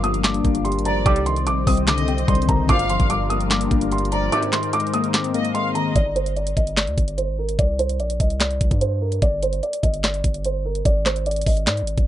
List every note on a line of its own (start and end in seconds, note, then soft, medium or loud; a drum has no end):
0.00 0.42 G1 loud
0.00 0.44 G2 medium
0.00 0.65 F3 medium
0.00 0.64 G3 medium
0.00 1.04 G3 medium
0.00 0.43 A#3 medium
0.00 1.04 D4 medium
0.00 1.04 F4 medium
0.00 1.02 A#4 medium
0.00 0.22 D#6 medium
0.00 closed hi-hat medium
0.14 closed hi-hat medium
0.24 1.06 D4 loud
0.24 0.62 D6 medium
0.24 snare loud
0.24 clap medium
0.24 closed hi-hat medium
0.34 closed hi-hat medium
0.45 0.77 G1 loud
0.45 1.06 A#3 medium
0.45 kick medium
0.45 closed hi-hat medium
0.55 closed hi-hat medium
0.65 1.06 G3 medium
0.65 0.83 C6 medium
0.65 closed hi-hat medium
0.72 1.04 G#1 loud
0.72 closed hi-hat medium
0.79 closed hi-hat medium
0.85 1.06 F3 medium
0.85 1.05 D5 medium
0.85 1.04 A#5 medium
0.85 closed hi-hat medium
1.06 1.48 C2 loud
1.06 1.35 D#2 loud
1.06 2.08 C3 loud
1.06 2.67 C3 medium
1.06 1.35 D3 medium
1.06 1.35 G3 loud
1.06 2.67 C4 medium
1.06 2.67 C5 medium
1.06 2.67 D#5 medium
1.06 1.24 D6 loud
1.06 kick loud
1.06 closed hi-hat medium
1.16 closed hi-hat medium
1.26 2.28 D#3 medium
1.26 1.44 C6 medium
1.26 closed hi-hat medium
1.36 closed hi-hat medium
1.47 1.66 A#1 loud
1.47 2.27 G3 medium
1.47 1.65 D6 medium
1.47 closed hi-hat medium
1.67 2.26 C2 loud
1.67 2.07 C4 loud
1.67 1.85 D#6 medium
1.67 kick medium
1.67 open hi-hat medium
1.77 closed hi-hat medium
1.87 2.69 D3 loud
1.87 2.26 D#5 medium
1.87 2.26 D6 medium
1.87 snare loud
1.87 clap medium
1.87 closed hi-hat medium
1.98 closed hi-hat medium
2.08 2.69 C4 medium
2.08 closed hi-hat medium
2.18 closed hi-hat medium
2.28 2.48 C2 loud
2.28 2.69 G3 medium
2.28 2.46 C6 medium
2.28 kick loud
2.28 closed hi-hat medium
2.35 closed hi-hat medium
2.42 closed hi-hat medium
2.48 2.68 C2 loud
2.48 2.69 D#3 medium
2.48 2.67 A#5 medium
2.48 kick loud
2.48 closed hi-hat medium
2.69 2.98 G1 loud
2.69 2.98 D2 loud
2.69 3.71 G2 loud
2.69 2.98 A#2 loud
2.69 2.98 F3 loud
2.69 4.31 G3 medium
2.69 4.31 D4 medium
2.69 4.31 F4 medium
2.69 4.31 A#4 medium
2.69 3.07 F5 loud
2.69 2.87 D6 loud
2.69 kick loud
2.69 closed hi-hat medium
2.79 closed hi-hat medium
2.89 3.92 F3 medium
2.89 3.08 C6 medium
2.89 closed hi-hat medium
3.00 3.68 G1 loud
3.00 kick loud
3.00 closed hi-hat medium
3.09 3.90 G3 medium
3.09 3.28 D6 medium
3.09 closed hi-hat medium
3.30 3.70 A#3 medium
3.30 3.48 D#6 medium
3.30 closed hi-hat medium
3.41 closed hi-hat soft
3.51 4.32 D4 loud
3.51 3.89 D6 medium
3.51 snare loud
3.51 clap medium
3.51 closed hi-hat medium
3.61 closed hi-hat medium
3.71 4.30 G1 loud
3.71 4.32 A#3 medium
3.71 kick medium
3.71 closed hi-hat medium
3.81 closed hi-hat medium
3.92 4.32 G3 medium
3.92 4.10 C6 medium
3.92 closed hi-hat medium
3.98 closed hi-hat medium
4.05 closed hi-hat medium
4.12 4.32 F3 medium
4.12 4.31 D5 medium
4.12 4.30 A#5 medium
4.12 closed hi-hat medium
4.32 4.61 G#1 loud
4.32 4.61 D#2 loud
4.32 5.34 G#2 medium
4.32 4.61 C3 loud
4.32 5.94 G#3 medium
4.32 5.94 D#4 medium
4.32 5.94 A#4 medium
4.32 5.94 C5 medium
4.32 4.50 D6 loud
4.32 closed hi-hat medium
4.43 closed hi-hat medium
4.52 5.55 D#3 medium
4.52 4.71 C6 medium
4.52 snare medium
4.52 clap medium
4.52 closed hi-hat medium
4.63 closed hi-hat medium
4.73 5.54 G#3 medium
4.73 4.91 D6 loud
4.73 closed hi-hat medium
4.80 closed hi-hat medium
4.87 closed hi-hat soft
4.93 5.33 A#3 medium
4.93 5.12 D#6 medium
4.93 closed hi-hat medium
5.04 closed hi-hat medium
5.14 5.96 C4 loud
5.14 5.52 D6 medium
5.14 snare loud
5.14 clap medium
5.14 closed hi-hat medium
5.24 closed hi-hat medium
5.34 5.96 A#3 medium
5.34 5.54 D#5 medium
5.34 closed hi-hat medium
5.45 closed hi-hat medium
5.54 5.96 G#3 medium
5.54 5.74 F5 medium
5.54 5.73 C6 medium
5.54 closed hi-hat medium
5.75 5.96 D#3 medium
5.75 5.94 D#5 medium
5.75 5.93 A#5 medium
5.75 closed hi-hat medium
5.96 6.54 G1 loud
5.96 6.14 D5 loud
5.96 kick loud
5.96 closed hi-hat medium
6.16 6.34 C5 medium
6.16 closed hi-hat medium
6.26 closed hi-hat medium
6.36 6.54 D5 medium
6.36 closed hi-hat soft
6.47 closed hi-hat medium
6.57 6.89 G1 loud
6.57 6.75 D#5 medium
6.57 kick medium
6.57 closed hi-hat medium
6.67 closed hi-hat soft
6.77 7.15 D5 medium
6.77 snare loud
6.77 clap medium
6.77 closed hi-hat medium
6.87 6.97 D2 loud
6.87 closed hi-hat medium
6.98 7.30 G1 loud
6.98 kick medium
6.98 closed hi-hat medium
7.08 closed hi-hat medium
7.18 7.36 C5 medium
7.18 closed hi-hat medium
7.28 7.57 G#1 loud
7.39 7.57 A#4 medium
7.49 closed hi-hat medium
7.59 8.01 C2 loud
7.59 7.77 D5 medium
7.59 kick loud
7.59 closed hi-hat medium
7.79 7.97 C5 medium
7.79 closed hi-hat medium
7.89 closed hi-hat medium
8.00 8.19 A#1 loud
8.00 8.18 D5 medium
8.00 closed hi-hat soft
8.10 closed hi-hat medium
8.20 8.59 C2 loud
8.20 8.38 D#5 medium
8.20 kick medium
8.20 closed hi-hat medium
8.30 closed hi-hat medium
8.40 8.79 D5 medium
8.40 snare loud
8.40 clap medium
8.40 closed hi-hat medium
8.51 closed hi-hat medium
8.61 8.71 C2 loud
8.61 kick medium
8.61 closed hi-hat medium
8.71 9.20 G2 loud
8.71 kick medium
8.71 closed hi-hat medium
8.81 8.99 C5 medium
8.81 closed hi-hat medium
9.01 9.20 A#4 medium
9.12 closed hi-hat medium
9.22 9.61 G1 loud
9.22 9.40 D5 loud
9.22 kick loud
9.22 closed hi-hat medium
9.43 9.61 C5 medium
9.43 closed hi-hat medium
9.53 closed hi-hat medium
9.63 9.81 D5 medium
9.63 closed hi-hat soft
9.73 closed hi-hat medium
9.83 10.23 G1 loud
9.83 10.01 D#5 medium
9.83 kick medium
9.83 closed hi-hat medium
9.94 closed hi-hat soft
10.04 10.42 D5 medium
10.04 snare loud
10.04 clap medium
10.04 closed hi-hat medium
10.14 closed hi-hat medium
10.24 10.83 G1 loud
10.24 kick medium
10.24 closed hi-hat medium
10.34 closed hi-hat medium
10.45 10.63 C5 medium
10.45 closed hi-hat medium
10.65 10.83 A#4 medium
10.75 closed hi-hat medium
10.85 11.44 G#1 loud
10.85 11.03 D5 medium
10.85 kick loud
10.85 closed hi-hat medium
11.06 11.24 C5 medium
11.06 snare medium
11.06 clap medium
11.06 closed hi-hat medium
11.16 closed hi-hat medium
11.26 11.44 D5 medium
11.26 closed hi-hat medium
11.31 closed hi-hat medium
11.36 closed hi-hat medium
11.41 closed hi-hat medium
11.46 11.69 G#1 loud
11.46 11.65 D#5 medium
11.46 kick medium
11.46 open hi-hat medium
11.57 closed hi-hat soft
11.67 11.84 G#2 loud
11.67 12.05 D5 medium
11.67 snare loud
11.67 clap medium
11.67 closed hi-hat medium
11.77 closed hi-hat medium
11.82 11.97 G#1 loud
11.87 closed hi-hat medium
11.97 12.07 G#1 loud
11.97 kick medium
11.97 closed hi-hat medium